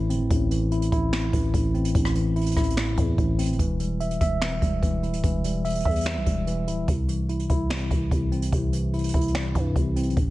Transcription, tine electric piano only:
Already playing: A2 E3 C4 E4
0.10 C4
0.31 A2
0.51 E3
0.72 E4
0.92 E4
1.13 A2
1.33 E3
1.54 A2
1.74 C4
1.95 A2
2.16 E3
2.36 E4
2.57 E4
2.77 A2
2.98 E3
3.18 A2
3.39 C4
3.59 E3
3.80 G3
4.00 E5
4.21 E5
4.42 E3
4.62 G3
4.83 E3
5.03 E4
5.24 E3
5.44 G3
5.65 E5
5.85 E5
6.06 E3
6.26 G3
6.47 E3
6.68 E4
6.88 C3
7.09 E3
7.29 E4
7.50 E4
7.70 C3
7.91 E3
8.11 C3
8.32 C4
8.52 C3
8.73 E3
8.94 E4
9.14 E4
9.35 C3
9.55 E3
9.76 C3
9.96 C4
10.17 A2

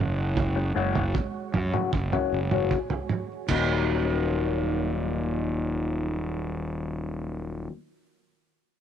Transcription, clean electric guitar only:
0.56 muted clean electric guitar stroke
0.75 C#3 F#3 C#4 F#4
1.14 muted clean electric guitar stroke
1.74 C#3 F#3 C#4 F#4
1.93 muted clean electric guitar stroke
2.13 C#3 F#3 C#4 F#4
2.52 C#3 F#3 C#4 F#4
2.91 muted clean electric guitar stroke
3.49 D#2 A#2 D#3 F#3 A#3
3.53 D#4

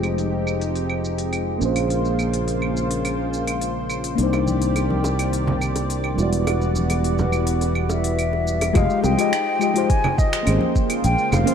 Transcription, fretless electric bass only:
Already playing: F1
1.61 A#1
4.18 C2
6.18 E1
8.75 F1
9.04 C2
10.47 G#1
11.04 A#1
11.32 F1

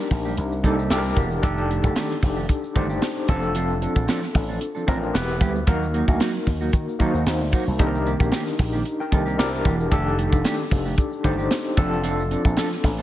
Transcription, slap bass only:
0.11 A#1
0.37 C2
0.64 C2
0.90 C2
1.17 E1
1.43 F1
1.84 F1
2.23 F1
2.76 G1
3.28 F1
3.96 A#1
4.35 A1
4.88 A1
5.14 E1
5.41 D2
5.67 D#2
6.08 D2
6.47 D#2
6.73 D#3
7.00 D#3
7.14 D#2
7.26 D#2
7.41 D2
7.67 C2
7.79 C2
8.20 A#1
8.59 A#1
9.12 C2
9.38 C2
9.65 E1
9.91 F1
10.32 F1
10.71 F1
11.24 G1
11.78 F1
12.45 A#1
12.84 A1

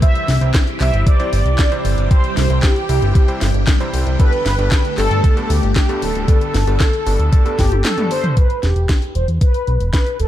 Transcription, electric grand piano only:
0.02 C3 G3 C4 E4 C5
0.41 C3 G3 C4 E4 C5
0.80 C3 G3 C4 E4 C5
1.20 C3 G3 C4 E4 C5
1.72 C3 G3 C4 E4 C5
2.11 C3 G3 C4 E4 C5
2.50 C3 G3 C4 E4 C5
2.89 C3 G3 C4 E4 C5
3.28 C3 G3 C4 E4 C5
3.80 C3 G3 C4 E4 C5
4.20 G2 G3 B3 D4 A4
4.59 G2 G3 B3 D4 A4
4.98 G2 G3 B3 D4 A4
5.37 G2 G3 B3 D4 A4
5.89 G2 G3 B3 D4 A4
6.28 G2 G3 B3 D4 A4
6.67 G2 G3 B3 D4 A4
7.06 G2 G3 B3 D4 A4
7.46 G2 G3 B3 D4 A4
7.98 G2 G3 B3 D4 A4

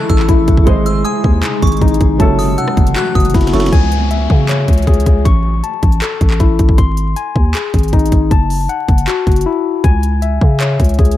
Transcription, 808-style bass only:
0.10 A1
0.29 A1
0.48 A1
0.67 G#1
1.24 D#2
1.62 G#1
1.82 G#1
2.01 G#1
2.20 F#1
2.77 F#1
3.15 F#1
3.34 F#1
3.53 F#1
3.73 C#2
4.30 C#3
4.68 C#2
4.87 C#2
5.06 C#2
5.25 A1
5.83 A1
6.21 A1
6.40 A1
6.59 A1
6.78 G#1
7.36 D#2
7.74 G#1
7.93 G#1
8.12 G#1
8.31 F#1
8.88 F#1
9.27 F#1
9.84 C#2
10.41 C#3
10.80 C#2
10.99 C#2

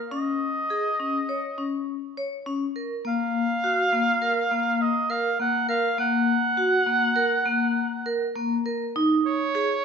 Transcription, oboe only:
0.12 D#5
3.07 F5
4.81 D#5
5.10 F5
5.41 F#5
5.69 F5
5.99 F#5
9.26 C#5

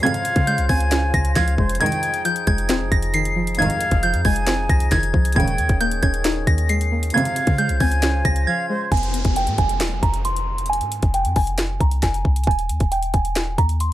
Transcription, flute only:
0.03 F5
0.69 G#5
1.36 F5
1.58 C5
1.81 G5
3.58 F5
4.25 G#5
5.36 G5
7.14 F5
7.81 G#5
8.47 F5
8.70 C5

